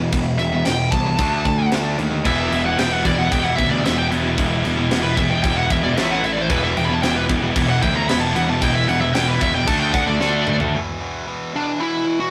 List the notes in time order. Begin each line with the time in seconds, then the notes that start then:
0.00 E2 B2
0.13 E1 E2 B2, kick, crash
0.38 E1 E2 B2 E5, crash
0.53 E2 B2
0.65 E1 E2 B2 G5, snare, crash
0.92 C2 E2 B2 A5, kick, crash
1.05 E2 B2
1.18 D2 D3 A3 D4, kick, crash
1.45 D2 D3 A3, kick, crash
1.58 D3 A3
1.72 D2 D3 A3 D4, snare, crash
1.97 D#2 D3 A3, crash
2.11 D3 A3
2.24 E1 E2 B2 E3 G3 B3 E4 E5, kick, crash
2.51 E1 E2 B2, crash
2.65 E2 B2 F#5
2.77 E1 E2 B2 E3 G3 B3 E4 G5, snare, crash
2.93 F#5
3.04 E1 E2 B2 E3 G3 B3 E4 D5, kick, crash
3.18 E2 B2 F#5
3.31 E1 E2 B2 E3 G3 B3 E4 G5, kick, crash
3.44 F#5
3.56 D2 E2 B2 E5, kick, crash
3.69 E2 B2 D5
3.84 E1 E2 B2 E3 G3 B3 E4 E5, snare, crash
3.97 G5
4.10 E1 E2 B2 E3 G3 B3 E4, crash
4.24 E2 B2
4.37 E1 E2 B2 E3 G3 B3 E4, kick, crash
4.63 E1 E2 B2, crash
4.76 E2 B2
4.91 E1 E2 B2 E3 G3 B3 E4, snare, crash
5.03 B4
5.16 E1 E2 B2 E3 G3 B3 E4 E5, kick, crash
5.30 E2 B2 G5
5.43 E1 E2 B2 E3 G3 B3 E4 G5, kick, crash
5.57 F#5
5.70 E1 E2 B2 E5, kick, crash
5.84 E2 B2 D5
5.96 A1 A2 E3 A3 E4 E5, snare, crash
6.11 F#5
6.22 A1 A2 E3 A3 E4 E5, crash
6.32 D5
6.37 A2 E3
6.42 C5
6.49 E1 E2 B2 E3 G3 B3 E4 B4, kick, crash
6.64 E5
6.77 E1 E2 B2 G5, crash
6.85 B5
6.90 E2 B2 A5
7.02 E1 E2 B2 E3 G3 B3 E4 G5, snare, crash
7.16 B4
7.28 E1 E2 B2 E3 G3 B3 E4, kick, crash
7.44 E2 B2
7.55 E1 E2 B2 E3 G3 B3 E4, kick, crash
7.70 F#5
7.82 D2 E2 B2 G5, kick, crash
7.96 E2 B2 A#5
8.09 E1 E2 B2 E3 G3 B3 E4 B5, snare, crash
8.21 A5
8.35 E1 E2 B2 E3 G3 B3 E4 F#5, crash
8.49 E2 B2 A5
8.61 E1 E2 B2 E3 G3 B3 E4 G5, kick, crash
8.75 E5
8.88 E1 E2 B2 F#5, crash
9.01 E2 B2 E5
9.13 E1 E2 B2 E3 G3 B3 E4 G5, snare, crash
9.28 B4
9.40 E1 E2 B2 E3 G3 B3 E4 E5, kick, crash
9.54 E2 B2 G5
9.67 D2 D3 A3 D4 A4 A5, kick, crash
9.79 G5
9.93 D2 D3 A3 F#5, kick, crash
10.06 D3 A3 D5
10.20 D2 D3 A3 D4 A4, snare
10.47 D2 D3 A3 D4 A4, mid tom
10.60 D3 A3, floor tom
10.74 E2 B2 E3
11.00 E2 B2 E3
11.26 E2 B2 E3
11.53 E2 B2 E3 D4
11.79 E2 B2 E3 E4
12.05 E2 B2 E3
12.20 F#4